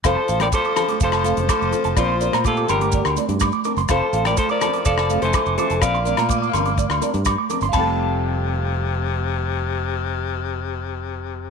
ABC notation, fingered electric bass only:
X:1
M:4/4
L:1/16
Q:1/4=125
K:F
V:1 name="Fingered electric bass" clef=bass
F,,, z A,,,2 z4 F,,,3 F,,, z F,,, z F,,, | B,,,3 B,,3 G,,,3 D,, z G,,2 z2 _G,,, | F,,, z A,,,2 z4 F,,,3 F,,, z F,,, z F,,, | B,,,3 B,,3 G,,,3 D,, z G,,2 z2 G,,, |
F,,,16- | F,,,16 |]